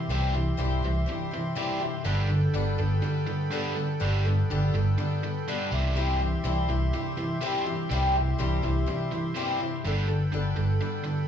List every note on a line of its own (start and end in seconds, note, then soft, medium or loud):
0.00 2.02 G4 medium
0.00 2.02 E5 medium
0.00 2.03 C6 medium
0.09 0.50 C2 loud
0.09 0.34 C3 medium
0.09 0.33 C3 medium
0.09 0.33 E3 medium
0.09 0.34 G3 medium
0.09 0.34 G3 loud
0.09 0.34 C4 medium
0.09 0.33 E4 medium
0.09 0.32 G4 medium
0.33 0.56 C3 medium
0.33 0.57 E3 medium
0.33 0.57 C4 soft
0.33 0.57 E4 soft
0.33 0.57 G4 soft
0.57 0.79 C2 medium
0.57 0.83 C3 medium
0.57 0.81 C3 medium
0.57 0.81 E3 medium
0.57 0.82 G3 medium
0.57 0.83 C4 medium
0.57 0.81 E4 medium
0.57 0.81 G4 medium
0.82 1.04 C2 medium
0.82 1.06 C3 medium
0.82 1.06 E3 medium
0.82 1.05 C4 soft
0.82 1.06 E4 soft
0.82 1.06 G4 medium
1.06 1.30 C3 medium
1.06 1.30 E3 medium
1.06 1.31 G3 medium
1.06 1.31 C4 medium
1.06 1.31 E4 medium
1.06 1.30 G4 medium
1.31 1.55 C3 medium
1.31 1.55 E3 medium
1.31 1.55 C4 soft
1.31 1.55 E4 soft
1.31 1.55 G4 medium
1.55 1.80 C3 medium
1.55 1.80 E3 medium
1.55 1.81 G3 medium
1.55 1.80 G3 medium
1.55 1.81 C4 medium
1.55 1.80 E4 medium
1.55 1.79 G4 medium
1.80 2.03 C3 medium
1.80 2.03 E3 medium
1.80 2.04 C4 soft
1.80 2.06 E4 medium
1.80 2.05 G4 medium
2.04 2.47 G1 loud
2.04 2.28 G2 medium
2.04 2.28 D3 loud
2.04 2.29 G3 medium
2.04 2.29 G3 loud
2.04 2.30 B3 medium
2.04 2.30 D4 medium
2.04 5.68 A4 medium
2.04 2.29 A4 medium
2.04 5.68 G5 medium
2.04 5.68 B5 medium
2.29 2.52 G2 medium
2.29 2.52 D3 medium
2.29 2.53 B3 soft
2.29 2.53 D4 soft
2.29 2.54 A4 medium
2.54 2.75 G1 medium
2.54 2.76 G2 medium
2.54 2.77 D3 medium
2.54 2.79 G3 medium
2.54 2.78 B3 medium
2.54 2.78 D4 medium
2.54 2.77 A4 medium
2.78 3.00 G1 medium
2.78 3.01 G2 medium
2.78 3.01 D3 medium
2.78 3.01 B3 soft
2.78 3.02 D4 medium
2.78 3.03 A4 medium
3.02 3.25 G2 medium
3.02 3.25 D3 medium
3.02 3.27 G3 medium
3.02 3.28 B3 medium
3.02 3.27 D4 medium
3.02 3.26 A4 medium
3.27 3.49 G2 medium
3.27 3.50 D3 medium
3.27 3.51 B3 soft
3.27 3.52 D4 soft
3.27 3.52 A4 medium
3.51 3.74 G2 medium
3.51 3.75 D3 medium
3.51 3.76 G3 medium
3.51 3.76 G3 loud
3.51 3.77 B3 medium
3.51 3.77 D4 medium
3.51 3.76 A4 medium
3.76 3.99 G2 medium
3.76 3.99 D3 medium
3.76 3.99 B3 medium
3.76 3.99 D4 medium
3.76 4.00 A4 medium
4.00 4.42 G1 loud
4.00 4.24 G2 medium
4.00 4.24 D3 medium
4.00 4.25 G3 medium
4.00 4.25 B3 medium
4.00 4.24 D4 medium
4.00 4.23 A4 medium
4.24 4.48 G2 medium
4.24 4.49 D3 medium
4.24 4.50 B3 soft
4.24 4.50 D4 soft
4.24 4.49 A4 soft
4.50 4.71 G1 medium
4.50 4.72 G2 medium
4.50 4.72 D3 medium
4.50 4.75 G3 medium
4.50 4.75 B3 medium
4.50 4.74 D4 medium
4.50 4.74 A4 medium
4.74 4.95 G1 loud
4.74 4.96 G2 medium
4.74 4.97 D3 medium
4.74 4.97 B3 soft
4.74 4.99 D4 soft
4.74 4.99 A4 medium
4.98 5.20 G2 medium
4.98 5.21 D3 medium
4.98 5.23 G3 medium
4.98 5.23 B3 medium
4.98 5.23 D4 medium
4.98 5.22 A4 medium
5.23 5.45 G2 medium
5.23 5.46 D3 medium
5.23 5.47 B3 soft
5.23 5.48 D4 soft
5.23 5.48 A4 medium
5.48 5.71 G2 medium
5.48 5.71 D3 medium
5.48 5.72 G3 medium
5.48 5.71 G3 medium
5.48 5.72 B3 loud
5.48 5.73 D4 medium
5.48 5.71 A4 medium
5.71 6.33 C2 medium
5.71 5.94 C3 medium
5.71 5.95 E3 medium
5.71 5.95 G3 medium
5.71 5.96 C4 medium
5.71 5.96 E4 medium
5.71 5.96 G4 medium
5.71 9.81 G4 medium
5.71 9.81 E5 medium
5.71 9.81 C6 medium
5.95 6.19 C3 loud
5.95 6.21 C3 medium
5.95 6.19 E3 loud
5.95 6.21 G3 medium
5.95 6.20 G3 loud
5.95 6.21 C4 medium
5.95 6.20 E4 medium
5.95 6.19 G4 medium
6.20 6.42 C3 medium
6.20 6.42 E3 medium
6.20 6.43 C4 soft
6.20 6.44 E4 medium
6.20 6.45 G4 soft
6.44 6.65 C2 medium
6.44 6.69 C3 medium
6.44 6.66 C3 medium
6.44 6.67 E3 medium
6.44 6.69 G3 medium
6.44 6.69 C4 medium
6.44 6.68 E4 medium
6.44 6.67 G4 medium
6.68 6.90 C2 medium
6.68 6.91 C3 medium
6.68 6.91 E3 medium
6.68 6.93 C4 soft
6.68 6.94 E4 medium
6.68 6.93 G4 medium
6.93 7.15 C3 medium
6.93 7.16 E3 medium
6.93 7.18 G3 medium
6.93 7.18 C4 medium
6.93 7.17 E4 medium
6.93 7.16 G4 medium
7.17 7.39 C3 medium
7.17 7.40 E3 medium
7.17 7.41 C4 soft
7.17 7.42 E4 soft
7.17 7.41 G4 medium
7.41 7.65 C3 medium
7.41 7.66 C3 medium
7.41 7.65 E3 medium
7.41 7.66 G3 loud
7.41 7.65 G3 medium
7.41 7.67 C4 medium
7.41 7.67 E4 medium
7.41 7.65 G4 loud
7.66 7.88 C3 medium
7.66 7.88 E3 medium
7.66 7.90 C4 soft
7.66 7.90 E4 medium
7.66 7.90 G4 medium
7.90 8.31 C2 loud
7.90 8.13 C3 loud
7.90 8.15 C3 medium
7.90 8.14 E3 loud
7.90 8.15 G3 medium
7.90 8.14 G3 loud
7.90 8.15 C4 medium
7.90 8.14 E4 medium
7.90 8.13 G4 loud
8.14 8.37 C3 medium
8.14 8.38 E3 medium
8.14 8.38 C4 soft
8.14 8.38 E4 soft
8.14 8.39 G4 medium
8.39 8.60 C2 medium
8.39 8.63 C3 medium
8.39 8.61 C3 medium
8.39 8.62 E3 medium
8.39 8.64 G3 medium
8.39 8.63 C4 medium
8.39 8.62 E4 medium
8.39 8.61 G4 loud
8.62 8.84 C2 loud
8.62 8.85 C3 medium
8.62 8.86 E3 medium
8.62 8.86 C4 soft
8.62 8.86 E4 soft
8.62 8.87 G4 medium
8.86 9.09 C3 medium
8.86 9.10 E3 medium
8.86 9.11 G3 medium
8.86 9.12 C4 medium
8.86 9.12 E4 medium
8.86 9.11 G4 medium
9.12 9.34 C3 medium
9.12 9.34 E3 medium
9.12 9.35 C4 soft
9.12 9.36 E4 soft
9.12 9.36 G4 medium
9.35 9.58 C3 medium
9.35 9.60 C3 medium
9.35 9.59 E3 medium
9.35 9.60 G3 medium
9.35 9.59 G3 medium
9.35 9.61 C4 medium
9.35 9.61 E4 medium
9.35 9.60 G4 loud
9.60 9.82 C3 medium
9.60 9.82 E3 medium
9.60 9.85 C4 soft
9.60 9.86 E4 medium
9.60 9.85 G4 medium
9.84 10.26 G1 loud
9.84 10.06 G2 medium
9.84 10.07 D3 medium
9.84 10.09 G3 medium
9.84 10.08 G3 medium
9.84 10.09 B3 medium
9.84 10.09 D4 medium
9.84 11.28 A4 medium
9.84 10.08 A4 medium
9.84 11.28 G5 medium
9.84 11.28 B5 medium
10.08 10.30 G2 medium
10.08 10.30 D3 medium
10.08 10.32 B3 soft
10.08 10.33 D4 soft
10.08 10.33 A4 soft
10.32 10.53 G1 medium
10.32 10.54 G2 medium
10.32 10.55 D3 medium
10.32 10.57 G3 medium
10.32 10.57 B3 medium
10.32 10.57 D4 medium
10.32 10.55 A4 medium
10.56 10.77 G1 medium
10.56 10.79 G2 medium
10.56 10.78 D3 medium
10.56 10.80 B3 soft
10.56 10.81 D4 medium
10.56 10.81 A4 soft
10.81 11.02 G2 medium
10.81 11.03 D3 medium
10.81 11.05 G3 medium
10.81 11.06 B3 medium
10.81 11.05 D4 medium
10.81 11.04 A4 medium
11.04 11.26 G2 medium
11.04 11.27 D3 medium
11.04 11.28 B3 soft
11.04 11.28 D4 soft
11.04 11.28 A4 soft